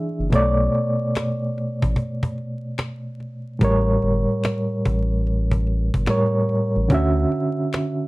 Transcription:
Already playing: E3 D4 G#4 E5
0.19 F#1, cajon slap
0.30 B1 B2 A3 C#5, cajon bass
0.36 D5
0.75 cajon slap
1.15 finger snap, cajon slap
1.58 cajon slap
1.82 A1, cajon bass
1.96 cajon bass, cajon slap
2.23 cajon bass
2.38 cajon slap
2.78 finger snap, cajon slap
3.20 cajon slap
3.59 A1 A2 G3 A#4, cajon bass
3.65 C#5
4.02 G1, cajon slap
4.44 finger snap, cajon slap
4.85 A1, cajon bass
5.27 cajon slap
5.51 cajon bass
5.67 cajon slap
5.94 G1, cajon bass
6.06 A2 G3 A#4, finger snap, cajon slap
6.10 C#5
6.49 cajon slap
6.76 A1
6.89 D2 D3 C#4 F#4, cajon bass
6.94 E5
7.32 cajon slap
7.73 finger snap, cajon slap

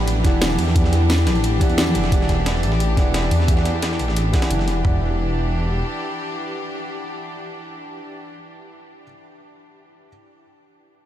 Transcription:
Already playing: A1 E3 D4 E4 G4 D5 F#5
0.08 closed hi-hat
0.16 high conga
0.23 E1 E3 E4 G4 D5 F#5, kick, snare, closed hi-hat
0.42 snare, closed hi-hat
0.50 snare, high conga
0.59 E2, closed hi-hat, open hi-hat
0.67 snare
0.74 E3 E4 G4 D5 F#5, kick, closed hi-hat, high conga
0.84 snare
0.93 snare, closed hi-hat
1.02 high conga
1.10 snare, closed hi-hat
1.18 snare
1.27 A1, snare, closed hi-hat, high conga
1.35 closed hi-hat
1.44 closed hi-hat
1.52 high conga
1.59 E3 E4 G4 D5 F#5, kick, closed hi-hat
1.70 E2, closed hi-hat
1.78 snare, closed hi-hat
1.87 high conga
1.95 E1, closed hi-hat
2.04 snare
2.11 E1 E3 E4 G4 D5 F#5, kick, closed hi-hat
2.21 snare
2.29 kick, snare, closed hi-hat
2.46 snare, closed hi-hat
2.55 snare
2.63 A1, closed hi-hat
2.72 snare
2.80 closed hi-hat
2.96 E1 E3 E4 G4 D5 F#5, kick, snare, closed hi-hat
3.14 snare, closed hi-hat
3.23 snare
3.31 E2, closed hi-hat, open hi-hat
3.40 snare
3.47 E3 E4 G4 D5 F#5, kick, closed hi-hat
3.57 snare
3.65 snare, closed hi-hat
3.82 snare, closed hi-hat
3.91 snare
3.99 A1, closed hi-hat
4.08 snare
4.17 snare, closed hi-hat
4.32 E3 E4 G4 D5 F#5, kick, snare, closed hi-hat
4.42 snare, closed hi-hat
4.51 F#1, closed hi-hat
4.59 snare
4.68 E1, snare, closed hi-hat
4.82 E1 E3 D4 E4 G4 D5, kick, floor tom
4.87 F#5

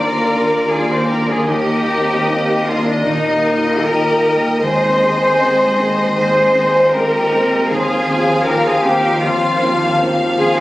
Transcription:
Already playing: D#2 D#3 A#3 D4 F4 A#4 D5 A#5
0.19 F4
0.34 D4 F4 A#4
0.45 G4
0.70 A#3 D4 F4 G#4 A#4 G#5
0.89 G#4 C5 C6
0.97 A#4
1.07 D4 F4 G4 A#4 A#5
1.22 A#3
1.27 F4 G#4 G#5
1.47 D#2 D#3 D#4 G4 D#5
1.51 G5
1.74 A#3
1.86 D#4 G4 A#4
2.00 C4
2.26 A#3 D#4 G4 A#4
2.52 A#4
2.65 D4 D#4 F4 G4 A#4 F5
2.78 A#3
2.84 A#3 D4 D5
3.02 A#2 D#3 A#3 D#4 D#5
3.29 D#4
3.44 D#4 G4 A#4
3.57 F4
3.83 A#3 D#4 G4 A#4 A#5
4.10 A#4
4.25 D#4 G4 A#4
4.36 A#3
4.60 D#2 D#3 G#3 C4 G#4 C5 C6
4.87 C4
5.02 C4 G#4 C5
5.39 C4 G#4 C5
5.65 G#3
5.77 C4 G#4 C5
5.90 C4
6.15 G#2 D#3 G#4 C5 C6
6.42 D#4
6.55 C4 G#4 C5
6.69 F4
6.94 G#3 C4 G4 A#4 C5 A#5
7.19 C5
7.32 G#3 C4 C5
7.45 C4
7.69 D#2 D#3 F3 F4 G#4 F5 G#5
7.96 D#4
8.09 C4 F4 C5
8.21 F4
8.46 C4 D#4 F4 G4 A#4 C5 A#5
8.66 F4 G#4 G#5
8.73 F4
8.84 C4 D#4 F4 G4 C5 G5
8.98 D#4
9.23 D#2 D#3 C4 F4 F5
9.50 C4
9.62 C4 F4 C5
9.76 D4
10.01 C4 D#4 F4 C5
10.26 F4
10.38 C4 F4 G#4 C5 G#5
10.52 D#4
10.57 C5

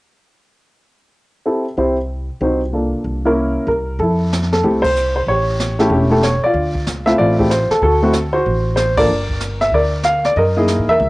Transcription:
1.46 C4 E4 G4 A4
1.77 C2 C4 E4 G4 C5
2.41 C2 C4 D#4 F#4 C5
2.73 A#3 D4 F4 A4
3.04 C2
3.25 A#3 C#4 E4 A#4
3.67 C2 A#4
3.99 F2 E4 A4, brush sweep
4.32 snare, hi-hat pedal
4.42 snare
4.52 A4, snare
4.63 C2 A3 C4 E4 G4, brush sweep
4.82 C5, kick, ride
4.96 hi-hat pedal
5.16 C5
5.26 A1 G4 C#5, brush sweep
5.60 snare, hi-hat pedal
5.79 A3 C#4 E4 G4 A4, snare
5.90 E1 C#4 G4, brush sweep
6.10 A3 C#4 E4 G4 A4
6.23 C#5, snare, hi-hat pedal
6.44 F4 D5, muted upright bass stroke
6.54 D2, brush sweep
6.75 kick
6.87 C#2, snare, hi-hat pedal
7.06 A3 C4 E4 F4 E5, snare
7.18 A1 F4 D5, brush sweep
7.39 A3 C4 E4 G4, kick
7.50 C5, snare, hi-hat pedal
7.71 A4, muted upright bass stroke, snare
7.82 D2 F#4 A4, brush sweep
8.02 A3 C4 E4 F#4
8.13 snare, hi-hat pedal
8.33 F#4 C5
8.45 A1, brush sweep
8.76 C5, snare, hi-hat pedal
8.97 A#3 D4 F4 A4 A#4 D5, kick, ride
9.08 G1, brush sweep
9.29 kick
9.40 snare, hi-hat pedal
9.61 E5, snare
9.72 D2 A#4 D5, brush sweep
10.03 F5, snare, hi-hat pedal
10.24 D5, snare
10.36 F#2 A#4 D#5, brush sweep
10.57 A#3 D#4 E4 G#4
10.68 snare, hi-hat pedal
10.79 G#2
10.88 E2 A#4 E5
11.00 C#2, brush sweep

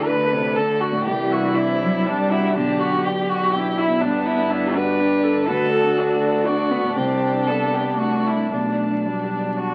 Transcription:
Already playing: D2 D4 A4 D5
0.05 D3 B4
0.09 D5
0.25 A4
0.33 C3
0.40 D5
0.56 D3 D4 A4
0.75 D5
0.80 F#4
0.91 A2
1.05 C2 E3 G4
1.23 D5
1.31 E4 F#4
1.40 D4
1.55 E4 D5
1.72 C5
1.82 F#3
1.89 D5
2.06 G3 D4
2.23 D5
2.30 E4 F#4
2.40 G2
2.55 B1 D3 D4 G4
2.72 D5
2.79 F#4
2.89 D4
3.05 G4 D5
3.22 G4
3.29 F#4
3.38 D5
3.52 D4 E4 G4
3.71 D5
3.78 E4
3.87 B2
4.01 G1 G2 B3 D4 D5
4.20 D5
4.26 E4
4.36 D4
4.50 D4 E4 D5
4.66 G4
4.74 D4 F#4 B4
4.84 D5
5.00 D4 G4
5.17 D5
5.23 A4
5.33 D3
5.47 D2 D4 F#4 A4 B4
5.66 D5
5.72 A4
5.83 D4
5.96 D4 A4 D5
6.16 F#4
6.32 D5
6.45 D4 F#4
6.65 D5
6.70 B3
6.81 A2
6.95 C2 G3 C4 D4 G4
7.14 D5
7.31 D4
7.47 B3 A4 D5
7.64 G4
7.74 G4
7.81 D5
7.97 A3 D4 F#4
8.16 D5
8.27 E4
8.35 G2
8.50 B1 A3 D4
8.70 D5
8.87 D4
9.05 G3 D4 D5
9.24 G4
9.41 D5
9.59 D4 F#4

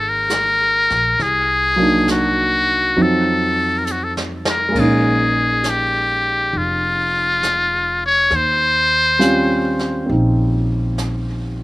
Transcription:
Already playing: G#1 F3 G#3 A#3 D#4
0.00 A4
0.09 A#4
0.30 snare, hi-hat pedal
0.90 A#1, snare
1.20 C2 G#4, brush sweep, snare
1.76 F#3 A#3 D4
1.81 D#4
2.08 F#4, snare, hi-hat pedal
2.96 F2 F3 F#3 C4 D#4, brush sweep
3.02 A4
3.78 A#4
3.85 A4, hi-hat pedal
3.91 F#4
4.04 A4
4.17 snare
4.45 snare
4.50 A#4
4.69 G#3 A#3
4.75 A#1 C#4, brush sweep, kick, snare, ride
4.80 D#4 G#4
5.64 snare, hi-hat pedal
5.69 G4
6.53 F1, brush sweep
6.58 F4
7.43 snare, hi-hat pedal
8.06 C#5
8.31 D#2, brush sweep, snare
8.35 C5
9.19 G3 C4 C#4 F4, snare, hi-hat pedal
9.79 snare
10.06 A#1 C4 D#4
10.10 brush sweep
10.98 snare, hi-hat pedal

